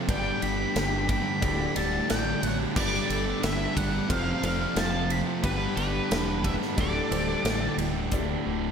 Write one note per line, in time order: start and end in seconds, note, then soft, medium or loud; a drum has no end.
0.08 0.30 G1 loud
0.08 0.73 G2 loud
0.08 0.74 D3 loud
0.08 0.40 G3 loud
0.08 0.41 B3 loud
0.08 1.41 D4 medium
0.08 1.15 D4 medium
0.08 0.42 D4 loud
0.08 1.41 G4 medium
0.08 1.16 G4 medium
0.08 0.43 G4 loud
0.08 1.41 B4 medium
0.08 1.16 B4 medium
0.08 1.15 D5 medium
0.08 1.41 D5 medium
0.08 0.40 D5 medium
0.08 0.44 G5 loud
0.08 kick loud
0.08 ride medium
0.41 0.64 G1 medium
0.41 0.59 G3 medium
0.41 0.59 B3 medium
0.41 0.58 D4 medium
0.41 0.57 G4 medium
0.41 1.05 G5 medium
0.41 1.09 B5 loud
0.41 ride medium
0.58 0.74 G3 medium
0.58 0.75 B3 medium
0.58 0.75 D4 medium
0.58 0.75 G4 medium
0.74 1.20 G1 medium
0.74 1.40 G2 medium
0.74 1.40 D3 loud
0.74 1.06 G3 medium
0.74 1.07 B3 loud
0.74 1.08 D4 loud
0.74 1.09 G4 loud
0.74 snare loud
0.74 ride loud
1.08 1.26 G3 medium
1.08 1.25 B3 medium
1.08 1.25 D4 medium
1.08 1.24 G4 medium
1.08 1.72 G5 medium
1.08 1.79 B5 loud
1.08 kick medium
1.08 ride medium
1.25 1.41 G3 medium
1.25 1.41 B3 medium
1.25 1.40 D4 medium
1.25 1.40 G4 medium
1.41 1.65 D1 medium
1.41 1.73 D2 medium
1.41 1.59 A2 loud
1.41 1.58 D3 loud
1.41 1.57 G3 medium
1.41 1.69 D4 medium
1.41 2.73 D4 medium
1.41 1.69 G4 medium
1.41 2.73 G4 medium
1.41 1.69 A4 medium
1.41 2.75 A4 medium
1.41 1.69 D5 medium
1.41 2.74 D5 medium
1.41 kick loud
1.41 ride loud
1.58 1.74 A2 medium
1.58 1.75 D3 medium
1.58 1.75 G3 medium
1.74 1.98 D1 medium
1.74 2.06 D2 medium
1.74 1.92 A2 medium
1.74 1.91 D3 medium
1.74 1.90 G3 medium
1.74 2.56 D4 medium
1.74 2.56 G4 medium
1.74 2.56 A4 medium
1.74 2.56 D5 medium
1.74 2.08 F#5 medium
1.74 2.07 A5 medium
1.74 ride medium
1.91 2.07 A2 medium
1.91 2.08 D3 medium
1.91 2.09 G3 medium
2.07 2.32 A1 medium
2.07 2.58 D2 loud
2.07 2.25 A2 loud
2.07 2.24 D3 loud
2.07 2.23 G3 medium
2.07 2.44 G5 loud
2.07 snare loud
2.07 ride loud
2.11 2.45 D5 medium
2.24 2.59 A2 medium
2.24 2.58 D3 medium
2.24 2.57 G3 medium
2.43 2.65 A1 medium
2.43 2.57 C#5 medium
2.43 2.56 F#5 loud
2.43 ride medium
2.58 2.75 A2 medium
2.58 2.74 D3 medium
2.58 2.73 G3 medium
2.74 2.99 G1 loud
2.74 3.39 G2 loud
2.74 3.40 D3 medium
2.74 3.07 G3 loud
2.74 3.08 B3 loud
2.74 4.08 D4 medium
2.74 3.83 D4 medium
2.74 3.08 D4 loud
2.74 4.08 G4 medium
2.74 3.83 G4 medium
2.74 3.07 G4 medium
2.74 3.09 G4 loud
2.74 4.08 B4 medium
2.74 3.84 B4 medium
2.74 4.08 D5 medium
2.74 3.83 D5 medium
2.74 3.09 D5 loud
2.74 kick loud
2.74 crash loud
2.94 snare soft
3.08 3.32 G1 medium
3.08 3.25 G3 medium
3.08 3.24 B3 medium
3.08 3.24 D4 medium
3.08 3.23 G4 medium
3.08 3.41 A4 medium
3.08 3.43 D5 medium
3.08 ride medium
3.24 3.40 G3 medium
3.24 3.41 B3 medium
3.24 3.41 D4 medium
3.24 3.42 G4 medium
3.40 3.65 G1 medium
3.40 4.07 G2 medium
3.40 4.07 D3 loud
3.40 3.73 G3 loud
3.40 3.74 B3 loud
3.40 3.75 D4 loud
3.40 3.75 G4 loud
3.40 3.75 E5 medium
3.40 snare loud
3.40 ride loud
3.45 3.75 B4 medium
3.74 3.99 G1 loud
3.74 3.91 G3 medium
3.74 3.91 B3 medium
3.74 3.90 D4 medium
3.74 3.89 G4 loud
3.74 4.08 D5 medium
3.74 4.08 F#5 medium
3.74 kick medium
3.74 ride medium
3.90 4.07 G3 medium
3.90 4.07 B3 medium
3.90 4.07 D4 medium
3.90 4.07 G4 medium
4.07 4.32 F1 loud
4.07 4.59 F2 medium
4.07 4.59 C3 medium
4.07 4.25 F3 medium
4.07 4.25 A3 medium
4.07 4.24 C4 loud
4.07 4.37 C4 medium
4.07 4.23 F4 medium
4.07 4.37 F4 medium
4.07 4.37 A4 medium
4.07 4.37 C5 medium
4.07 4.41 C5 medium
4.07 kick loud
4.07 ride loud
4.11 5.43 F3 medium
4.11 5.44 C4 medium
4.11 5.44 F4 medium
4.11 5.43 A4 medium
4.11 5.43 C5 medium
4.11 4.44 F5 medium
4.24 4.40 F3 medium
4.24 4.41 A3 medium
4.24 4.41 C4 medium
4.24 4.42 F4 medium
4.41 4.65 F1 loud
4.41 4.59 F3 medium
4.41 4.58 A3 medium
4.41 4.57 C4 medium
4.41 5.24 C4 medium
4.41 5.23 F4 medium
4.41 4.57 F4 medium
4.41 5.23 A4 medium
4.41 5.24 C5 medium
4.41 4.75 D5 medium
4.41 4.79 F5 medium
4.41 ride medium
4.58 4.74 F3 medium
4.58 4.75 A3 medium
4.58 4.75 C4 medium
4.58 4.76 F4 medium
4.74 5.20 F1 medium
4.74 5.26 F2 medium
4.74 5.26 C3 loud
4.74 4.92 F3 loud
4.74 4.92 A3 medium
4.74 4.91 C4 loud
4.74 4.90 F4 loud
4.74 5.08 F5 medium
4.74 5.12 A5 medium
4.74 snare loud
4.74 ride loud
4.92 5.26 F3 medium
4.92 5.26 A3 medium
4.92 5.25 C4 medium
4.92 5.24 F4 medium
5.10 5.20 F5 medium
5.10 5.20 B5 medium
5.10 ride medium
5.25 5.42 F3 medium
5.25 5.42 A3 medium
5.25 5.41 C4 medium
5.25 5.41 F4 medium
5.43 5.66 G1 loud
5.43 6.09 G2 medium
5.43 6.09 D3 medium
5.43 5.75 G3 loud
5.43 5.76 B3 medium
5.43 6.51 D4 medium
5.43 6.77 D4 medium
5.43 5.76 D4 loud
5.43 6.51 G4 medium
5.43 5.75 G4 medium
5.43 5.77 G4 loud
5.43 6.77 G4 medium
5.43 5.76 B4 loud
5.43 6.51 B4 medium
5.43 6.51 D5 medium
5.43 6.77 D5 medium
5.43 kick loud
5.43 ride loud
5.76 5.99 G1 medium
5.76 5.95 G3 medium
5.76 5.94 B3 medium
5.76 5.93 D4 medium
5.76 6.41 G4 medium
5.76 5.92 G4 medium
5.76 6.46 B4 medium
5.76 ride medium
5.93 6.09 G3 medium
5.93 6.10 B3 medium
5.93 6.10 D4 medium
5.93 6.11 G4 medium
6.10 6.55 E1 medium
6.10 6.75 G2 medium
6.10 6.76 D3 medium
6.10 6.42 G3 loud
6.10 6.43 B3 loud
6.10 6.43 D4 loud
6.10 6.45 G4 loud
6.10 snare loud
6.10 ride medium
6.44 6.61 G3 medium
6.44 6.61 B3 medium
6.44 6.60 D4 medium
6.44 6.59 G4 medium
6.44 6.54 B4 medium
6.44 6.54 E5 medium
6.44 kick medium
6.44 ride medium
6.60 6.77 G3 medium
6.60 6.77 B3 medium
6.60 6.76 D4 medium
6.60 6.76 G4 medium
6.60 snare soft
6.77 7.00 D1 medium
6.77 7.08 D2 medium
6.77 6.96 A2 medium
6.77 6.94 D3 medium
6.77 6.93 G3 loud
6.77 7.04 D4 medium
6.77 8.11 D4 medium
6.77 7.04 G4 medium
6.77 8.11 G4 medium
6.77 7.74 A4 medium
6.77 7.05 A4 medium
6.77 8.11 A4 medium
6.77 7.04 D5 medium
6.77 8.10 D5 medium
6.77 7.76 D5 medium
6.77 kick loud
6.77 ride medium
6.94 7.09 A2 medium
6.94 7.10 D3 medium
6.94 7.11 G3 medium
7.10 7.33 D1 medium
7.10 7.42 D2 medium
7.10 7.28 A2 medium
7.10 7.27 D3 medium
7.10 7.26 G3 medium
7.10 7.92 D4 medium
7.10 7.92 G4 medium
7.10 7.92 A4 medium
7.10 7.92 C5 medium
7.10 ride medium
7.27 7.43 A2 medium
7.27 7.44 D3 medium
7.27 7.44 G3 medium
7.44 7.67 A1 medium
7.44 7.95 D2 loud
7.44 7.62 A2 medium
7.44 7.61 D3 medium
7.44 7.60 G3 loud
7.44 snare loud
7.44 ride medium
7.61 7.95 A2 soft
7.61 7.94 D3 medium
7.61 7.93 G3 medium
7.78 8.12 D1 medium
7.78 ride medium
7.94 8.10 A2 medium
7.94 8.10 D3 medium
7.94 8.10 G3 medium
8.11 8.35 D1 medium
8.11 8.44 D2 loud
8.11 8.45 A2 medium
8.11 8.45 D3 medium
8.11 8.72 D4 medium
8.11 8.72 G4 medium
8.11 8.72 A4 medium
8.11 8.72 D5 medium
8.11 kick loud
8.11 closed hi-hat medium
8.45 8.69 D1 medium
8.45 8.72 D2 medium
8.45 8.72 A2 medium
8.45 8.72 D3 medium